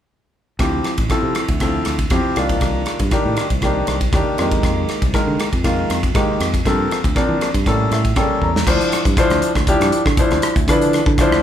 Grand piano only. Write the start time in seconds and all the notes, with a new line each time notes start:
0.59 F3 C4 E4 G4
1.10 F3 C4 E4 A4
1.61 F3 C4 E4 A4
2.11 F3 C4 E4 G4
2.37 D#3 A#3 D4 F4
3.12 D#3 A#3 D4 G4
3.63 D#3 A#3 D4 G4
4.14 D#3 A#3 D4 G4
4.39 D#3 G#3 A#3 G4
5.14 D#3 G#3 A#3 A#4
5.64 D#3 G#3 A#3 F4
6.14 D#3 G#3 A#3 G4
6.66 F3 A#3 C4 A4
7.16 F3 A#3 C4 D4
7.66 G3 A#3 C#4 A4
7.92 E5
8.16 G3 A#3 C#4 A4 G5
8.43 A#5
8.67 F3 D4 E4 C5
9.19 F3 D4 E4 C5
9.68 F3 D4 E4 G4
10.19 F3 D4 E4 C5
10.69 F3 D4 E4 B4
11.20 F3 D4 E4 C5